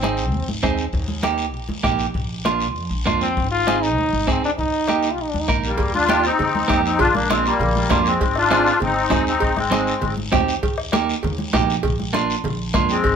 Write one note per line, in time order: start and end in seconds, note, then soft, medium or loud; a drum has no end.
0.00 0.33 G#1 medium
0.00 0.49 C4 medium
0.00 0.24 C4 medium
0.00 0.24 D#4 medium
0.00 0.24 G#4 medium
0.00 bombo rim medium
0.00 short guiro medium
0.04 high conga medium
0.17 short guiro medium
0.32 0.45 D#2 medium
0.32 high conga soft
0.32 long guiro medium
0.48 0.60 G#1 medium
0.48 high conga medium
0.62 0.88 D#2 medium
0.62 0.84 C4 medium
0.62 0.85 D#4 medium
0.62 0.85 G#4 medium
0.62 bombo low medium
0.62 bombo rim medium
0.62 high conga medium
0.62 short guiro medium
0.78 short guiro medium
0.93 1.54 D#2 medium
0.93 bombo low medium
0.93 high conga soft
0.93 long guiro medium
1.08 high conga medium
1.23 1.45 A#3 medium
1.23 1.45 D#4 medium
1.23 1.45 G4 medium
1.23 bombo rim medium
1.23 high conga medium
1.23 short guiro medium
1.38 short guiro medium
1.54 1.66 A#1 medium
1.54 high conga soft
1.54 long guiro medium
1.69 1.81 D#2 medium
1.69 high conga medium
1.83 2.09 A#1 medium
1.83 2.05 A#3 medium
1.83 2.06 D#4 medium
1.83 2.06 G4 medium
1.83 bombo low medium
1.83 bombo rim medium
1.83 high conga medium
1.83 short guiro medium
1.99 short guiro medium
2.14 2.76 A#1 medium
2.14 bombo low medium
2.14 high conga soft
2.14 long guiro medium
2.44 2.67 A#3 medium
2.44 2.67 D4 medium
2.44 2.67 F4 medium
2.44 bombo rim medium
2.44 high conga medium
2.44 short guiro medium
2.60 short guiro medium
2.76 2.88 F2 medium
2.76 high conga soft
2.76 long guiro medium
2.90 3.03 A#1 medium
3.06 3.39 F2 medium
3.06 3.27 A#3 medium
3.06 3.27 D4 medium
3.06 3.28 F4 loud
3.06 bombo low medium
3.06 bombo rim medium
3.06 high conga medium
3.06 short guiro medium
3.21 3.50 C4 medium
3.21 short guiro medium
3.37 3.98 G#1 medium
3.37 bombo low medium
3.37 high conga soft
3.37 long guiro medium
3.52 3.84 F4 loud
3.67 3.88 C4 medium
3.67 3.88 D#4 medium
3.67 3.89 G#4 medium
3.67 bombo rim medium
3.67 high conga medium
3.67 short guiro medium
3.83 4.28 D#4 loud
3.83 short guiro medium
3.98 4.10 D#2 medium
3.98 high conga soft
3.98 long guiro medium
4.13 4.25 G#1 medium
4.13 high conga medium
4.27 4.52 D#2 medium
4.27 4.49 C4 medium
4.27 4.43 C4 medium
4.27 4.49 D#4 medium
4.27 4.49 G#4 medium
4.27 bombo low medium
4.27 bombo rim medium
4.27 high conga medium
4.27 short guiro medium
4.44 4.51 D4 medium
4.44 short guiro medium
4.58 5.18 D#2 medium
4.58 5.14 D#4 medium
4.58 bombo low medium
4.58 high conga soft
4.58 long guiro medium
4.88 5.09 A#3 medium
4.88 5.10 D#4 medium
4.88 5.10 G4 medium
4.88 bombo rim medium
4.88 high conga medium
4.88 short guiro medium
5.03 short guiro medium
5.12 5.23 F4 medium
5.18 5.30 A#1 medium
5.18 5.32 D#4 medium
5.18 high conga soft
5.18 long guiro medium
5.31 5.46 D#2 medium
5.31 5.41 D4 medium
5.31 high conga medium
5.40 5.49 D#4 medium
5.48 5.73 A#1 medium
5.48 5.70 A#3 medium
5.48 5.70 D#4 medium
5.48 5.70 A#4 medium
5.48 bombo low medium
5.48 bombo rim medium
5.48 high conga medium
5.48 short guiro medium
5.64 5.93 G3 medium
5.64 5.93 A#3 medium
5.64 short guiro medium
5.78 6.27 D#2 medium
5.78 bombo low medium
5.78 cowbell loud
5.78 high conga soft
5.78 long guiro medium
5.94 6.22 D4 medium
5.94 6.25 F4 loud
5.94 high conga medium
6.08 6.30 A#3 medium
6.08 6.30 D#4 medium
6.08 6.31 G4 medium
6.08 bombo rim medium
6.08 cowbell medium
6.08 high conga medium
6.08 short guiro medium
6.24 6.81 C4 medium
6.24 6.82 D#4 loud
6.24 short guiro medium
6.39 6.64 D#2 medium
6.39 cowbell medium
6.39 high conga soft
6.39 low conga medium
6.39 long guiro medium
6.55 high conga medium
6.68 6.94 F2 medium
6.68 6.90 A#3 medium
6.68 6.90 D#4 medium
6.68 6.90 G4 medium
6.68 bombo low medium
6.68 bombo rim medium
6.68 cowbell medium
6.68 high conga medium
6.68 short guiro medium
6.85 6.99 C4 medium
6.85 7.00 D#4 medium
6.85 short guiro medium
6.99 7.48 A#1 medium
6.99 7.13 D4 medium
6.99 7.15 F4 loud
6.99 bombo low medium
6.99 cowbell loud
6.99 high conga soft
6.99 low conga medium
6.99 long guiro medium
7.14 7.28 A#3 medium
7.14 7.29 D4 medium
7.14 high conga medium
7.29 7.44 G#3 medium
7.29 7.51 A#3 medium
7.29 7.46 C4 medium
7.29 7.51 D4 medium
7.29 7.52 F4 medium
7.29 bombo rim medium
7.29 cowbell medium
7.29 high conga loud
7.29 short guiro medium
7.45 8.02 G3 medium
7.45 8.08 A#3 medium
7.45 short guiro medium
7.60 7.84 A#1 loud
7.60 cowbell medium
7.60 high conga soft
7.60 low conga medium
7.60 long guiro medium
7.76 high conga medium
7.90 8.15 F2 medium
7.90 8.12 A#3 medium
7.90 8.12 D4 medium
7.90 8.12 F4 loud
7.90 bombo low medium
7.90 bombo rim medium
7.90 cowbell medium
7.90 high conga medium
7.90 low timbale medium
7.90 short guiro medium
8.06 8.34 G#3 medium
8.06 8.37 C4 medium
8.06 short guiro medium
8.21 8.70 G#1 medium
8.21 bombo low medium
8.21 cowbell loud
8.21 high conga soft
8.21 long guiro medium
8.36 8.79 D4 medium
8.36 8.79 F4 medium
8.36 bombo rim medium
8.51 8.72 C4 medium
8.51 8.72 D#4 medium
8.51 8.72 G#4 medium
8.51 bombo rim medium
8.51 cowbell medium
8.51 high conga medium
8.51 short guiro medium
8.66 short guiro medium
8.80 9.06 G#1 medium
8.80 9.24 C4 medium
8.80 9.25 D#4 medium
8.80 cowbell medium
8.80 high conga soft
8.80 low conga medium
8.80 long guiro medium
9.10 9.36 D#2 medium
9.10 9.32 C4 medium
9.10 9.32 D#4 medium
9.10 9.32 G#4 medium
9.10 bombo low medium
9.10 bombo rim medium
9.10 cowbell medium
9.10 high conga medium
9.10 low timbale medium
9.10 short guiro medium
9.27 9.55 C4 medium
9.27 9.59 D#4 medium
9.27 short guiro medium
9.40 9.91 G#1 medium
9.40 bombo low medium
9.40 cowbell loud
9.40 high conga soft
9.40 long guiro medium
9.57 10.14 G#3 medium
9.57 10.14 C4 medium
9.57 bombo rim medium
9.57 high conga medium
9.71 9.93 C4 medium
9.71 9.93 D#4 medium
9.71 9.93 G#4 medium
9.71 bombo rim medium
9.71 cowbell medium
9.71 high conga medium
9.71 short guiro medium
9.87 short guiro medium
10.02 10.27 G#1 medium
10.02 cowbell medium
10.02 high conga soft
10.02 low conga medium
10.02 long guiro medium
10.17 high conga medium
10.32 10.57 D#2 medium
10.32 10.54 C4 medium
10.32 10.54 D#4 medium
10.32 10.54 G4 medium
10.32 bombo low medium
10.32 bombo rim medium
10.32 cowbell medium
10.32 high conga medium
10.32 low conga medium
10.32 low timbale medium
10.32 short guiro medium
10.48 short guiro medium
10.63 11.12 D#2 medium
10.63 bombo low medium
10.63 cowbell loud
10.63 high conga soft
10.63 long guiro medium
10.78 bombo rim medium
10.92 11.14 A#3 medium
10.92 11.15 D#4 medium
10.92 11.15 G4 medium
10.92 bombo rim medium
10.92 cowbell medium
10.92 high conga loud
10.92 short guiro medium
11.09 short guiro medium
11.23 11.48 D#2 medium
11.23 cowbell medium
11.23 high conga soft
11.23 low conga medium
11.23 long guiro medium
11.39 high conga medium
11.53 11.78 A#1 medium
11.53 11.75 A#3 loud
11.53 11.75 D#4 medium
11.53 11.75 G4 medium
11.53 bombo low medium
11.53 bombo rim medium
11.53 cowbell medium
11.53 high conga medium
11.53 low timbale medium
11.53 short guiro medium
11.70 short guiro medium
11.83 12.33 A#1 medium
11.83 bombo low medium
11.83 cowbell loud
11.83 high conga soft
11.83 low conga medium
11.83 long guiro medium
11.99 high conga medium
12.13 12.35 A#3 medium
12.13 12.35 D4 medium
12.13 12.35 F4 medium
12.13 bombo rim medium
12.13 cowbell medium
12.13 high conga medium
12.13 short guiro medium
12.30 short guiro medium
12.44 12.69 A#1 medium
12.44 cowbell medium
12.44 high conga soft
12.44 low conga medium
12.44 long guiro medium
12.74 12.99 F2 medium
12.74 12.96 A#3 medium
12.74 12.96 D4 medium
12.74 12.96 F4 medium
12.74 bombo low medium
12.74 bombo rim medium
12.74 cowbell medium
12.74 high conga medium
12.74 low conga medium
12.74 short guiro medium
12.89 13.16 G#3 medium
12.89 13.16 C4 loud
12.89 short guiro medium
13.04 13.16 G#1 medium
13.04 bombo low medium
13.04 cowbell loud
13.04 high conga soft
13.04 long guiro medium